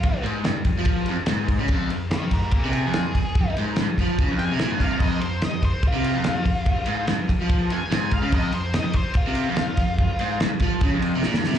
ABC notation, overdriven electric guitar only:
X:1
M:4/4
L:1/16
Q:1/4=145
K:Fm
V:1 name="Overdriven electric guitar" clef=bass
F,, z A,,2 G,, F,, F,, F,3 F,, z A,,3 D, | F,,2 F,,2 z F,,2 z2 C,2 F,,2 F,, F,,2 | F,, z A,,2 G,, F,, F,2 D, F,,2 C, B,, G,, C, F,, | F,,2 F,,2 z F,,2 z2 C,2 F,,2 F,, F,,2 |
F,, z A,,2 G,, F,, F,, F,3 F,, z A,,3 D, | F,,2 F,,2 z F,,2 z2 C,2 F,,2 F,, F,,2 | F,, z A,,2 G,, F,, F,2 D, F,,2 C, B,, G,, C, z |]